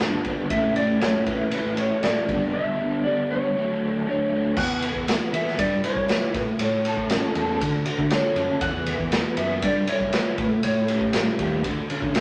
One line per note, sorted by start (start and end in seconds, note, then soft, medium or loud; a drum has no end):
0.00 0.26 G2 medium
0.00 0.22 G2 medium
0.00 0.49 D3 medium
0.00 0.27 G3 medium
0.00 0.27 B3 medium
0.00 0.24 D4 medium
0.00 snare loud
0.00 ride medium
0.24 0.53 B3 medium
0.24 0.50 D4 medium
0.24 kick medium
0.24 ride medium
0.29 0.51 G3 medium
0.50 0.95 A2 medium
0.50 1.02 A2 medium
0.50 1.00 E3 medium
0.50 0.79 A3 medium
0.50 0.76 C#4 medium
0.50 0.77 E5 loud
0.50 kick loud
0.50 ride medium
0.54 0.74 E4 loud
0.76 1.02 A3 medium
0.76 1.03 C#4 medium
0.76 1.04 E4 medium
0.76 1.01 D5 medium
0.76 ride medium
1.01 1.13 F#2 medium
1.01 1.52 E3 medium
1.01 1.29 A3 medium
1.01 1.27 C#4 medium
1.01 1.26 E4 medium
1.01 1.26 C#5 medium
1.01 snare loud
1.01 ride medium
1.15 1.37 A2 medium
1.26 1.53 A3 medium
1.26 1.53 C#4 medium
1.26 1.54 E4 medium
1.26 1.51 B4 medium
1.26 kick medium
1.26 ride medium
1.51 2.27 A2 medium
1.51 2.02 E3 medium
1.51 2.03 A3 medium
1.51 2.04 C#4 medium
1.51 2.05 E4 medium
1.51 1.79 B4 medium
1.51 ride medium
1.66 1.88 A2 medium
1.77 2.02 C#5 medium
1.77 ride medium
2.03 2.14 A2 loud
2.03 2.27 E3 medium
2.03 2.28 A3 medium
2.03 2.28 C#4 medium
2.03 2.28 E4 medium
2.03 2.53 D5 medium
2.03 snare loud
2.03 ride medium
2.28 2.51 G2 medium
2.28 2.52 G2 medium
2.28 2.53 D3 medium
2.28 2.54 G3 medium
2.28 2.54 B3 medium
2.28 2.55 D4 medium
2.28 kick loud
2.28 ride soft
2.53 3.04 G2 medium
2.53 3.03 D3 medium
2.53 2.81 G3 medium
2.53 2.80 B3 medium
2.53 2.78 D4 loud
2.53 3.04 E5 loud
2.79 3.05 G3 medium
2.79 3.06 B3 medium
2.79 3.06 D4 medium
3.04 3.54 D3 medium
3.04 3.32 G3 medium
3.04 3.31 B3 medium
3.04 3.29 D4 medium
3.04 3.31 D5 medium
3.31 3.55 G3 medium
3.31 3.55 B3 medium
3.31 3.54 D4 medium
3.31 4.06 C#5 medium
3.55 4.05 D3 medium
3.55 4.06 F#3 medium
3.55 4.07 A3 medium
3.55 4.08 D4 medium
4.06 4.55 D3 medium
4.06 4.33 F#3 medium
4.06 4.31 A3 medium
4.06 4.29 D4 medium
4.06 4.59 C#5 medium
4.31 4.57 F#3 soft
4.31 4.56 A3 medium
4.31 4.55 D4 medium
4.57 4.90 E2 loud
4.57 5.58 E3 medium
4.57 5.29 F#5 loud
4.57 kick loud
4.57 crash loud
4.82 5.31 B4 medium
4.82 ride medium
4.95 5.17 E2 medium
4.95 kick medium
5.07 5.58 B3 medium
5.07 snare loud
5.07 ride loud
5.07 tambourine medium
5.32 5.55 E3 medium
5.32 5.58 B4 medium
5.32 5.59 E5 medium
5.32 ride medium
5.47 snare soft
5.58 5.81 G2 loud
5.58 6.34 G3 medium
5.58 5.82 D5 medium
5.58 kick medium
5.58 ride medium
5.84 6.34 E4 medium
5.84 6.35 C#5 medium
5.84 ride medium
5.96 6.18 G3 medium
5.96 kick medium
6.08 6.34 B4 medium
6.08 snare loud
6.08 ride medium
6.08 tambourine loud
6.34 6.45 A2 medium
6.34 6.59 A2 medium
6.34 6.42 B4 medium
6.34 kick medium
6.34 snare soft
6.34 ride medium
6.59 6.93 A2 loud
6.59 7.61 A2 medium
6.59 7.57 C#5 medium
6.59 ride medium
6.85 7.34 A4 medium
6.85 ride medium
6.97 7.19 A2 medium
6.97 kick medium
7.10 7.60 C#4 medium
7.10 snare loud
7.10 ride medium
7.10 tambourine medium
7.35 7.57 E2 medium
7.35 7.61 A4 medium
7.35 ride medium
7.60 7.83 D2 loud
7.60 8.62 D3 medium
7.60 kick medium
7.60 ride medium
7.86 8.62 F#4 medium
7.86 ride medium
7.98 8.21 D3 medium
7.98 kick medium
8.10 8.62 A4 medium
8.10 8.63 C#5 medium
8.10 snare loud
8.10 ride medium
8.10 tambourine loud
8.35 8.47 F#2 medium
8.35 8.62 C#4 medium
8.35 ride medium
8.61 8.95 E2 loud
8.61 9.63 E3 medium
8.61 9.33 F#5 loud
8.61 kick loud
8.61 ride loud
8.86 9.37 B4 medium
8.86 ride medium
8.99 9.21 E2 medium
8.99 kick medium
9.12 9.63 B3 medium
9.12 snare loud
9.12 ride loud
9.12 tambourine loud
9.36 9.59 F#2 medium
9.36 9.63 B4 medium
9.36 9.63 E5 medium
9.36 ride medium
9.62 9.85 G2 loud
9.62 10.38 G3 medium
9.62 9.89 D5 medium
9.62 kick medium
9.62 ride loud
9.87 10.39 E4 medium
9.87 10.39 C#5 medium
9.87 ride medium
10.00 10.22 G3 medium
10.00 kick medium
10.13 10.39 B4 medium
10.13 snare loud
10.13 ride medium
10.13 tambourine medium
10.38 10.49 A2 loud
10.38 10.63 A2 medium
10.38 10.46 B4 medium
10.38 kick loud
10.38 ride medium
10.63 10.97 A2 loud
10.63 11.65 A2 medium
10.63 11.61 C#5 medium
10.63 ride medium
10.88 11.38 G4 medium
10.88 ride medium
11.01 11.23 A2 medium
11.01 kick medium
11.13 11.65 G3 medium
11.13 snare loud
11.13 ride loud
11.13 tambourine medium
11.39 11.62 D#2 medium
11.39 11.65 G4 medium
11.39 kick medium
11.39 ride medium
11.64 11.87 D2 medium
11.64 12.20 D3 medium
11.64 kick medium
11.64 ride medium
11.90 12.20 C#4 medium
11.90 ride medium
12.02 12.14 D3 medium
12.02 kick medium
12.14 12.20 F#2 medium
12.14 12.20 F#4 medium
12.14 snare loud
12.14 ride medium
12.14 tambourine loud